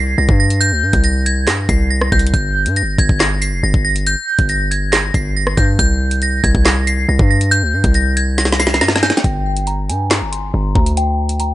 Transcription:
Already playing: 808-style bass C2, synth bell C7
0.18 808-style bass C2, synth bell A#6
0.29 808-style bass G2, kick
0.40 synth bell A#6
0.50 closed hi-hat
0.61 synth bell G6, closed hi-hat
0.72 808-style bass D2
0.83 808-style bass G2
0.93 808-style bass C2, kick, closed hi-hat
1.04 synth bell A#6, closed hi-hat
1.26 synth bell G#6, closed hi-hat
1.47 808-style bass G2, synth bell A#6, snare, clap, closed hi-hat
1.69 808-style bass C2, synth bell C7, kick, closed hi-hat
1.90 synth bell A#6
2.01 cross-stick
2.12 808-style bass C2, synth bell G6, kick, closed hi-hat
2.19 closed hi-hat
2.27 closed hi-hat
2.34 808-style bass G1, synth bell G6, kick, closed hi-hat
2.66 808-style bass G2, closed hi-hat
2.76 synth bell A#6, closed hi-hat
2.82 808-style bass G1
2.98 808-style bass G1, synth bell G#6, kick, closed hi-hat
3.09 808-style bass G1, kick
3.20 synth bell A#6, snare, clap, closed hi-hat
3.42 synth bell C7, closed hi-hat
3.52 808-style bass F1
3.63 808-style bass G1, synth bell A#6
3.74 808-style bass G1, kick
3.85 synth bell A#6
3.96 closed hi-hat
4.07 synth bell G6, closed hi-hat
4.39 808-style bass G1, kick, closed hi-hat
4.49 synth bell A#6, closed hi-hat
4.71 synth bell G#6, closed hi-hat
4.92 synth bell A#6, snare, clap, closed hi-hat
5.14 808-style bass G1, synth bell C7, kick, closed hi-hat
5.37 synth bell A#6
5.47 cross-stick
5.57 808-style bass G2, synth bell G6, kick, closed hi-hat
5.79 808-style bass C2, synth bell G6, kick, closed hi-hat
6.11 closed hi-hat
6.22 synth bell A#6, closed hi-hat
6.44 808-style bass C2, synth bell G#6, kick, closed hi-hat
6.55 808-style bass C2, kick
6.65 synth bell A#6, snare, clap, closed hi-hat
6.87 synth bell C7, closed hi-hat
7.09 808-style bass C2, synth bell A#6
7.19 808-style bass G2, kick
7.31 synth bell A#6
7.41 closed hi-hat
7.51 synth bell G6, closed hi-hat
7.63 808-style bass D2
7.73 808-style bass G2
7.84 808-style bass C2, kick, closed hi-hat
7.94 synth bell A#6, closed hi-hat
8.17 synth bell G#6, closed hi-hat
8.38 synth bell A#6, snare, closed hi-hat
8.45 snare
8.52 snare
8.59 synth bell C7, snare, closed hi-hat
8.67 snare
8.74 snare
8.81 808-style bass G2, synth bell A#6, snare
8.88 snare
8.96 snare
9.03 synth bell G6, snare, closed hi-hat
9.10 snare, closed hi-hat
9.17 snare, closed hi-hat
9.24 808-style bass G1, synth bell G5, kick, closed hi-hat
9.57 closed hi-hat
9.67 synth bell A#5, closed hi-hat
9.89 808-style bass G2, synth bell G#5, closed hi-hat
10.11 snare, clap, closed hi-hat
10.21 808-style bass G1
10.32 synth bell C6, closed hi-hat
10.54 808-style bass G1, synth bell A#5
10.75 808-style bass D2, synth bell A#5, kick
10.86 closed hi-hat
10.97 synth bell G5, closed hi-hat
11.29 closed hi-hat
11.40 synth bell A#5, closed hi-hat

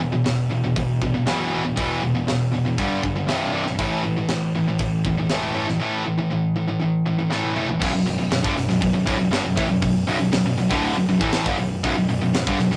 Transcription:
Already playing: picked electric bass E1
0.00 distorted electric guitar E2 B2
0.12 distorted electric guitar E2 B2
0.24 picked electric bass E1, distorted electric guitar E2 B2, snare, open hi-hat
0.50 picked electric bass E1, distorted electric guitar E2 B2
0.64 distorted electric guitar E2 B2
0.76 picked electric bass E1, distorted electric guitar E2 B2, kick, open hi-hat
1.02 picked electric bass B0, distorted electric guitar E2 B2, kick
1.14 distorted electric guitar E2 B2
1.27 picked electric bass B0, distorted electric guitar E2 B2 E3, snare, open hi-hat
1.51 picked electric bass D1, distorted electric guitar E2 B2 E3
1.64 distorted electric guitar E2 B2
1.76 picked electric bass E1, distorted electric guitar E2 B2 E3, kick, open hi-hat
2.02 picked electric bass E1, distorted electric guitar E2 B2
2.15 distorted electric guitar E2 B2
2.27 picked electric bass E1, distorted electric guitar E2 B2, snare, open hi-hat
2.52 picked electric bass E1, distorted electric guitar E2 B2
2.66 distorted electric guitar E2 B2
2.78 picked electric bass G1, distorted electric guitar G2 D3 G3, kick, open hi-hat
3.03 picked electric bass G1, distorted electric guitar G2 D3, kick
3.16 distorted electric guitar G2 D3
3.28 picked electric bass C1, distorted electric guitar C2 G2 C3, snare, open hi-hat
3.54 picked electric bass C1, distorted electric guitar C2 G2 C3
3.66 distorted electric guitar C2 G2, snare
3.78 picked electric bass A1, distorted electric guitar A2 E3 A3, kick, open hi-hat
4.04 distorted electric guitar A2 E3
4.16 distorted electric guitar A2 E3
4.28 picked electric bass A1, distorted electric guitar A2 E3, snare, open hi-hat
4.54 picked electric bass A1, distorted electric guitar A2 E3
4.68 distorted electric guitar A2 E3
4.79 picked electric bass A1, distorted electric guitar A2 E3, kick, open hi-hat
5.05 picked electric bass E1, distorted electric guitar A2 E3, kick
5.18 distorted electric guitar A2 E3
5.29 picked electric bass E1, distorted electric guitar A2 E3 A3, snare, open hi-hat
5.54 picked electric bass G1, distorted electric guitar A2 E3 A3
5.67 distorted electric guitar A2 E3, snare
5.79 distorted electric guitar A2 E3 A3
6.06 distorted electric guitar A2 E3
6.18 distorted electric guitar A2 E3
6.30 distorted electric guitar A2 E3
6.56 distorted electric guitar A2 E3
6.68 distorted electric guitar A2 E3
6.81 distorted electric guitar A2 E3
7.06 distorted electric guitar A2 E3
7.18 distorted electric guitar A2 E3
7.30 distorted electric guitar A2 E3 A3, snare
7.43 high tom
7.56 distorted electric guitar A2 E3 A3, mid tom
7.69 distorted electric guitar A2 E3, floor tom
7.80 picked electric bass B0, distorted electric guitar B1 F#2, kick, crash
7.93 picked electric bass B0, distorted electric guitar B1 F#2
8.06 picked electric bass B0, distorted electric guitar B1 F#2, open hi-hat
8.18 picked electric bass B0, distorted electric guitar B1 F#2
8.31 picked electric bass B0, distorted electric guitar B1 F#2, snare, open hi-hat
8.42 picked electric bass G1, distorted electric guitar G2 D3, kick
8.56 picked electric bass B0, distorted electric guitar B1 F#2, snare, open hi-hat
8.68 picked electric bass B0, distorted electric guitar B1 F#2, snare
8.80 picked electric bass B0, distorted electric guitar B1 F#2, kick, open hi-hat
8.93 picked electric bass B0, distorted electric guitar B1 F#2
9.06 picked electric bass D1, distorted electric guitar D2 A2, kick, open hi-hat
9.19 picked electric bass B0, distorted electric guitar B1 F#2
9.31 picked electric bass G1, distorted electric guitar G2 D3, snare, open hi-hat
9.44 picked electric bass B0, distorted electric guitar B1 F#2
9.56 picked electric bass A1, distorted electric guitar A2 E3, kick, open hi-hat
9.69 picked electric bass B0, distorted electric guitar B1 F#2
9.82 picked electric bass B0, distorted electric guitar B1 F#2, kick, open hi-hat
10.07 picked electric bass B0, distorted electric guitar B1 F#2, open hi-hat
10.19 picked electric bass B0, distorted electric guitar B1 F#2
10.32 picked electric bass B0, distorted electric guitar B1 F#2, snare, open hi-hat
10.45 picked electric bass B0, distorted electric guitar B1 F#2
10.57 picked electric bass B0, distorted electric guitar B1 F#2, open hi-hat
10.69 picked electric bass D1, distorted electric guitar D2 A2 D3, kick, snare
10.83 open hi-hat
10.95 picked electric bass B0, distorted electric guitar B1 F#2
11.07 picked electric bass B0, distorted electric guitar B1 F#2, open hi-hat
11.20 picked electric bass A1, distorted electric guitar A2 E3 A3, kick
11.33 snare, open hi-hat
11.46 picked electric bass G1, distorted electric guitar G2 D3, kick
11.58 picked electric bass B0, distorted electric guitar B1 F#2, open hi-hat
11.83 picked electric bass B0, distorted electric guitar B1 F#2, kick, open hi-hat
11.96 picked electric bass B0, distorted electric guitar B1 F#2
12.08 picked electric bass B0, distorted electric guitar B1 F#2, open hi-hat
12.21 picked electric bass B0, distorted electric guitar B1 F#2
12.33 picked electric bass B0, distorted electric guitar B1 F#2, snare, open hi-hat
12.47 picked electric bass G1, distorted electric guitar G2 D3, kick
12.59 picked electric bass B0, distorted electric guitar B1 F#2, snare, open hi-hat
12.70 picked electric bass B0, distorted electric guitar B1 F#2, snare

